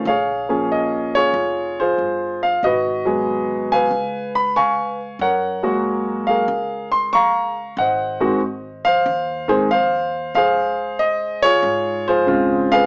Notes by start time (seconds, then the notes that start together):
0.05 A#1 G#4 C#5 F5
0.49 F3 A#3 C#4 G#4
0.72 D#5
1.15 F4 G#4 C#5
1.34 F1
1.80 F4 G#4 C5
1.98 G1
2.43 F5
2.63 G#1 F#4 B4 D#5
3.05 F#3 G#3 B3 G#4
3.72 B4 F5 G#5
3.91 C#2
4.35 B5
4.56 F5 G#5 C#6
5.19 F#2 A#4 C#5 F#5
5.63 F#3 G#3 A#3 F#4
6.27 G#4 A#4 F5
6.48 C#2
6.92 C6
7.13 F5 A#5 C#6
7.77 G#1 C5 D#5 F#5
8.20 D#3 G#3 C4 F#4
8.85 C5 F5
9.06 D#2
9.48 D#3 G#3 C4 G#4 C5
9.71 C5 F5
10.35 C#2 G#4 C5 F5
10.99 D#5
11.42 F4 G#4 C#5
11.63 G#2
12.08 F4 G#4 C5
12.27 C#3 G#3 C4 F4
12.72 G#4 B4 F5